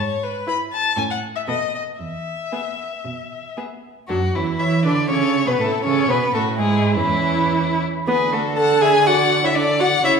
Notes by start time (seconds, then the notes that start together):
Already playing: G#2
0.00 C#5
0.23 B4
0.47 E4 B4 B5
0.73 A5
0.95 A2 C#4 A4 G#5
1.10 F#5
1.36 E5
1.47 B2 B3 A4 D#5
1.75 D#5
1.99 E2 E5
2.52 B3 G#4
3.05 B2
3.57 B3 G#4
4.08 F#2 F#3 D4 F#4
4.34 E2 E3 C#4 E4
4.59 E3 E4 C#5 E5
4.84 D3 D4 B4 D5
5.09 C#3 C#4 A4 C#5
5.46 B2 B3 G#4 B4
5.59 A2 A3 E4 A4
5.84 C#3 C#4 A4 C#5
6.09 B2 B3 G#4 B4
6.33 A2 A3 F#4 A4
6.58 G#2 G#3 E4 G#4
6.96 E2 E3 C#4 E4
8.07 D3 B3 G#4 B4
8.32 A3 F#4 A4
8.57 A4 F#5 A5
8.81 G#4 E5 G#5
9.06 F#4 D5 F#5
9.43 E4 C#5 E5
9.55 D4 A4 D5
9.79 F#4 D5 F#5
10.04 C#3 E4 C#5 E5